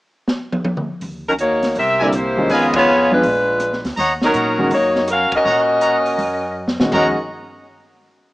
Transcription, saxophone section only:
0, 0, Header, 1, 2, 480
1, 0, Start_track
1, 0, Key_signature, -6, "minor"
1, 0, Tempo, 369231
1, 1322, Time_signature, 4, 2, 24, 8
1, 10834, End_track
2, 0, Start_track
2, 0, Title_t, "Saxophone section"
2, 0, Program_c, 0, 65
2, 1666, Note_on_c, 0, 63, 70
2, 1667, Note_on_c, 0, 54, 67
2, 1670, Note_on_c, 0, 61, 71
2, 1672, Note_on_c, 0, 70, 81
2, 1734, Note_off_c, 0, 54, 0
2, 1734, Note_off_c, 0, 63, 0
2, 1737, Note_off_c, 0, 61, 0
2, 1738, Note_off_c, 0, 70, 0
2, 1828, Note_on_c, 0, 58, 76
2, 1829, Note_on_c, 0, 66, 77
2, 1830, Note_on_c, 0, 63, 70
2, 1832, Note_on_c, 0, 73, 84
2, 2263, Note_off_c, 0, 58, 0
2, 2264, Note_off_c, 0, 63, 0
2, 2264, Note_off_c, 0, 66, 0
2, 2265, Note_off_c, 0, 73, 0
2, 2315, Note_on_c, 0, 67, 77
2, 2316, Note_on_c, 0, 60, 77
2, 2322, Note_on_c, 0, 70, 83
2, 2325, Note_on_c, 0, 76, 104
2, 2616, Note_off_c, 0, 60, 0
2, 2616, Note_off_c, 0, 67, 0
2, 2620, Note_off_c, 0, 70, 0
2, 2621, Note_off_c, 0, 76, 0
2, 2628, Note_on_c, 0, 64, 69
2, 2629, Note_on_c, 0, 74, 78
2, 2630, Note_on_c, 0, 67, 70
2, 2632, Note_on_c, 0, 58, 73
2, 2774, Note_off_c, 0, 64, 0
2, 2774, Note_off_c, 0, 67, 0
2, 2776, Note_off_c, 0, 58, 0
2, 2778, Note_off_c, 0, 74, 0
2, 2789, Note_on_c, 0, 64, 72
2, 2789, Note_on_c, 0, 72, 80
2, 2790, Note_on_c, 0, 67, 76
2, 2791, Note_on_c, 0, 58, 75
2, 3257, Note_off_c, 0, 64, 0
2, 3257, Note_off_c, 0, 72, 0
2, 3258, Note_off_c, 0, 58, 0
2, 3258, Note_off_c, 0, 67, 0
2, 3269, Note_on_c, 0, 68, 82
2, 3270, Note_on_c, 0, 59, 84
2, 3271, Note_on_c, 0, 75, 89
2, 3273, Note_on_c, 0, 65, 81
2, 3574, Note_off_c, 0, 59, 0
2, 3574, Note_off_c, 0, 68, 0
2, 3575, Note_off_c, 0, 65, 0
2, 3575, Note_off_c, 0, 75, 0
2, 3590, Note_on_c, 0, 65, 86
2, 3590, Note_on_c, 0, 68, 83
2, 3592, Note_on_c, 0, 59, 83
2, 3593, Note_on_c, 0, 73, 93
2, 4024, Note_off_c, 0, 65, 0
2, 4024, Note_off_c, 0, 68, 0
2, 4025, Note_off_c, 0, 59, 0
2, 4025, Note_off_c, 0, 73, 0
2, 4073, Note_on_c, 0, 56, 71
2, 4075, Note_on_c, 0, 71, 78
2, 4077, Note_on_c, 0, 65, 71
2, 4080, Note_on_c, 0, 62, 71
2, 4967, Note_off_c, 0, 56, 0
2, 4968, Note_off_c, 0, 71, 0
2, 4969, Note_off_c, 0, 65, 0
2, 4970, Note_off_c, 0, 62, 0
2, 5515, Note_on_c, 0, 61, 77
2, 5517, Note_on_c, 0, 63, 77
2, 5519, Note_on_c, 0, 70, 88
2, 5520, Note_on_c, 0, 54, 80
2, 6099, Note_off_c, 0, 61, 0
2, 6100, Note_off_c, 0, 63, 0
2, 6101, Note_off_c, 0, 70, 0
2, 6102, Note_off_c, 0, 54, 0
2, 6148, Note_on_c, 0, 66, 77
2, 6150, Note_on_c, 0, 63, 74
2, 6150, Note_on_c, 0, 73, 98
2, 6154, Note_on_c, 0, 58, 80
2, 6585, Note_off_c, 0, 66, 0
2, 6586, Note_off_c, 0, 63, 0
2, 6586, Note_off_c, 0, 73, 0
2, 6588, Note_off_c, 0, 58, 0
2, 6643, Note_on_c, 0, 70, 84
2, 6647, Note_on_c, 0, 66, 82
2, 6648, Note_on_c, 0, 77, 89
2, 6651, Note_on_c, 0, 61, 79
2, 6941, Note_off_c, 0, 70, 0
2, 6943, Note_off_c, 0, 66, 0
2, 6944, Note_off_c, 0, 77, 0
2, 6945, Note_off_c, 0, 61, 0
2, 6968, Note_on_c, 0, 75, 97
2, 6970, Note_on_c, 0, 61, 83
2, 6972, Note_on_c, 0, 70, 79
2, 6974, Note_on_c, 0, 66, 86
2, 8810, Note_off_c, 0, 75, 0
2, 8812, Note_off_c, 0, 61, 0
2, 8812, Note_off_c, 0, 70, 0
2, 8813, Note_off_c, 0, 66, 0
2, 9031, Note_on_c, 0, 66, 70
2, 9032, Note_on_c, 0, 70, 71
2, 9033, Note_on_c, 0, 61, 69
2, 9034, Note_on_c, 0, 75, 80
2, 9312, Note_off_c, 0, 66, 0
2, 9312, Note_off_c, 0, 70, 0
2, 9313, Note_off_c, 0, 61, 0
2, 9313, Note_off_c, 0, 75, 0
2, 10834, End_track
0, 0, End_of_file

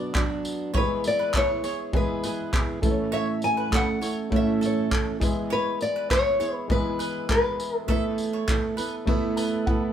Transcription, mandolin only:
0, 0, Header, 1, 2, 480
1, 0, Start_track
1, 0, Key_signature, 3, "major"
1, 0, Tempo, 595238
1, 601, Time_signature, 4, 2, 24, 8
1, 8007, End_track
2, 0, Start_track
2, 0, Title_t, "Mandolin"
2, 0, Program_c, 0, 25
2, 0, Note_on_c, 0, 74, 61
2, 220, Note_off_c, 0, 74, 0
2, 594, Note_on_c, 0, 73, 98
2, 711, Note_off_c, 0, 73, 0
2, 961, Note_on_c, 0, 71, 67
2, 1189, Note_off_c, 0, 71, 0
2, 1320, Note_on_c, 0, 73, 71
2, 1434, Note_off_c, 0, 73, 0
2, 1803, Note_on_c, 0, 71, 61
2, 2140, Note_off_c, 0, 71, 0
2, 2516, Note_on_c, 0, 73, 101
2, 2631, Note_off_c, 0, 73, 0
2, 2880, Note_on_c, 0, 71, 61
2, 3107, Note_off_c, 0, 71, 0
2, 3238, Note_on_c, 0, 73, 70
2, 3352, Note_off_c, 0, 73, 0
2, 3719, Note_on_c, 0, 69, 66
2, 4057, Note_off_c, 0, 69, 0
2, 4437, Note_on_c, 0, 73, 96
2, 4552, Note_off_c, 0, 73, 0
2, 4805, Note_on_c, 0, 71, 63
2, 5030, Note_off_c, 0, 71, 0
2, 5161, Note_on_c, 0, 73, 74
2, 5274, Note_off_c, 0, 73, 0
2, 5638, Note_on_c, 0, 71, 66
2, 5977, Note_off_c, 0, 71, 0
2, 6355, Note_on_c, 0, 76, 108
2, 6471, Note_off_c, 0, 76, 0
2, 6719, Note_on_c, 0, 73, 63
2, 6948, Note_off_c, 0, 73, 0
2, 7071, Note_on_c, 0, 71, 70
2, 7189, Note_off_c, 0, 71, 0
2, 7557, Note_on_c, 0, 71, 65
2, 7897, Note_off_c, 0, 71, 0
2, 8007, End_track
0, 0, End_of_file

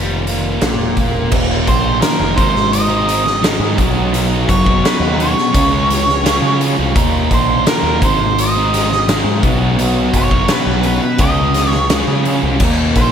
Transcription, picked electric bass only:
0, 0, Header, 1, 2, 480
1, 0, Start_track
1, 0, Tempo, 705053
1, 903, Time_signature, 4, 2, 24, 8
1, 8931, End_track
2, 0, Start_track
2, 0, Title_t, "Picked electric bass"
2, 0, Program_c, 0, 34
2, 0, Note_on_c, 0, 29, 91
2, 396, Note_off_c, 0, 29, 0
2, 416, Note_on_c, 0, 34, 87
2, 540, Note_off_c, 0, 34, 0
2, 540, Note_on_c, 0, 28, 83
2, 874, Note_off_c, 0, 28, 0
2, 899, Note_on_c, 0, 27, 98
2, 1119, Note_off_c, 0, 27, 0
2, 1141, Note_on_c, 0, 34, 107
2, 1360, Note_off_c, 0, 34, 0
2, 1496, Note_on_c, 0, 29, 84
2, 1608, Note_off_c, 0, 29, 0
2, 1617, Note_on_c, 0, 32, 83
2, 2432, Note_off_c, 0, 32, 0
2, 2449, Note_on_c, 0, 44, 92
2, 2564, Note_off_c, 0, 44, 0
2, 2576, Note_on_c, 0, 35, 105
2, 3031, Note_off_c, 0, 35, 0
2, 3055, Note_on_c, 0, 30, 97
2, 3276, Note_off_c, 0, 30, 0
2, 3404, Note_on_c, 0, 39, 94
2, 3629, Note_off_c, 0, 39, 0
2, 3776, Note_on_c, 0, 37, 110
2, 4351, Note_off_c, 0, 37, 0
2, 4370, Note_on_c, 0, 49, 88
2, 4593, Note_off_c, 0, 49, 0
2, 4620, Note_on_c, 0, 36, 89
2, 4729, Note_off_c, 0, 36, 0
2, 4738, Note_on_c, 0, 39, 106
2, 4957, Note_off_c, 0, 39, 0
2, 4976, Note_on_c, 0, 34, 90
2, 5196, Note_off_c, 0, 34, 0
2, 5329, Note_on_c, 0, 39, 85
2, 5443, Note_off_c, 0, 39, 0
2, 5458, Note_on_c, 0, 32, 95
2, 6272, Note_off_c, 0, 32, 0
2, 6292, Note_on_c, 0, 44, 82
2, 6405, Note_off_c, 0, 44, 0
2, 6420, Note_on_c, 0, 35, 101
2, 6873, Note_off_c, 0, 35, 0
2, 6899, Note_on_c, 0, 30, 93
2, 7117, Note_off_c, 0, 30, 0
2, 7257, Note_on_c, 0, 35, 89
2, 7476, Note_off_c, 0, 35, 0
2, 7616, Note_on_c, 0, 37, 104
2, 8191, Note_off_c, 0, 37, 0
2, 8220, Note_on_c, 0, 49, 76
2, 8438, Note_off_c, 0, 49, 0
2, 8463, Note_on_c, 0, 36, 87
2, 8571, Note_off_c, 0, 36, 0
2, 8582, Note_on_c, 0, 39, 96
2, 8799, Note_off_c, 0, 39, 0
2, 8822, Note_on_c, 0, 34, 101
2, 8931, Note_off_c, 0, 34, 0
2, 8931, End_track
0, 0, End_of_file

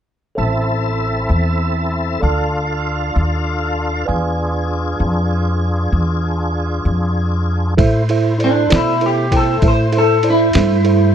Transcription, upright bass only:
0, 0, Header, 1, 2, 480
1, 0, Start_track
1, 0, Tempo, 616650
1, 290, Time_signature, 12, 3, 24, 8
1, 8678, End_track
2, 0, Start_track
2, 0, Title_t, "Upright bass"
2, 0, Program_c, 0, 32
2, 294, Note_on_c, 0, 33, 62
2, 993, Note_off_c, 0, 33, 0
2, 1009, Note_on_c, 0, 40, 62
2, 1711, Note_off_c, 0, 40, 0
2, 1732, Note_on_c, 0, 38, 64
2, 2433, Note_off_c, 0, 38, 0
2, 2460, Note_on_c, 0, 39, 66
2, 3158, Note_off_c, 0, 39, 0
2, 3181, Note_on_c, 0, 40, 62
2, 3878, Note_off_c, 0, 40, 0
2, 3891, Note_on_c, 0, 41, 69
2, 4593, Note_off_c, 0, 41, 0
2, 4611, Note_on_c, 0, 40, 66
2, 5313, Note_off_c, 0, 40, 0
2, 5333, Note_on_c, 0, 41, 66
2, 6034, Note_off_c, 0, 41, 0
2, 6057, Note_on_c, 0, 45, 77
2, 6755, Note_off_c, 0, 45, 0
2, 6788, Note_on_c, 0, 47, 79
2, 7479, Note_off_c, 0, 47, 0
2, 7489, Note_on_c, 0, 45, 72
2, 8189, Note_off_c, 0, 45, 0
2, 8214, Note_on_c, 0, 43, 74
2, 8678, Note_off_c, 0, 43, 0
2, 8678, End_track
0, 0, End_of_file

